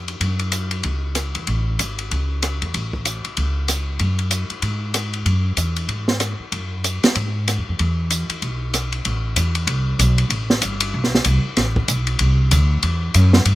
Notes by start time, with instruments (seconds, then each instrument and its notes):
Already playing: upright bass F2
0.08 ride
0.20 upright bass F#2, ride
0.39 ride
0.52 hi-hat pedal, ride
0.71 ride
0.83 upright bass C#2, ride
1.15 cross-stick, hi-hat pedal, ride
1.35 upright bass E2, ride
1.47 upright bass A1, ride
1.79 upright bass G#1, hi-hat pedal, ride
1.99 ride
2.11 upright bass C#2, ride
2.42 cross-stick, hi-hat pedal, ride
2.62 upright bass E2, ride
2.74 upright bass A1, ride
2.93 kick
3.05 hi-hat pedal, ride
3.25 muted upright bass stroke, ride
3.37 upright bass C#2, ride
3.68 cross-stick, hi-hat pedal, ride
3.99 upright bass F#2, ride
4.19 ride
4.31 hi-hat pedal, ride
4.50 muted upright bass stroke, ride
4.62 upright bass G#2, ride
4.94 cross-stick, hi-hat pedal, ride
5.13 ride
5.25 upright bass F#2, ride
5.57 upright bass E2, hi-hat pedal, ride
5.76 ride
5.88 upright bass G#2, ride
6.08 snare
6.20 cross-stick, hi-hat pedal, ride
6.40 muted upright bass stroke
6.52 upright bass F#2, ride
6.84 hi-hat pedal, ride
7.03 muted upright bass stroke, snare, ride
7.15 upright bass G#2, ride
7.48 cross-stick, hi-hat pedal, ride
7.58 upright bass E2
7.69 upright bass F2
7.79 upright bass E2, ride
8.10 hi-hat pedal, ride
8.30 muted upright bass stroke, ride
8.42 upright bass B1, ride
8.74 cross-stick, hi-hat pedal, ride
8.92 ride
9.05 upright bass A1, ride
9.36 upright bass E2, hi-hat pedal, ride
9.55 ride
9.67 upright bass C2, ride
9.99 upright bass B1, hi-hat pedal, ride
10.18 ride
10.30 upright bass A1, ride
10.50 snare
10.62 upright bass G1, hi-hat pedal, ride
10.80 ride
10.94 upright bass B1
11.04 snare
11.15 snare
11.24 upright bass C2, hi-hat pedal, ride
11.45 muted upright bass stroke
11.57 upright bass A1, snare, ride
11.76 kick
11.88 upright bass B1, hi-hat pedal, ride
12.07 ride
12.19 upright bass C2, ride
12.51 upright bass D2, hi-hat pedal, ride
12.83 upright bass E2, ride
13.14 upright bass F#2, hi-hat pedal, ride
13.33 snare
13.45 upright bass G2, ride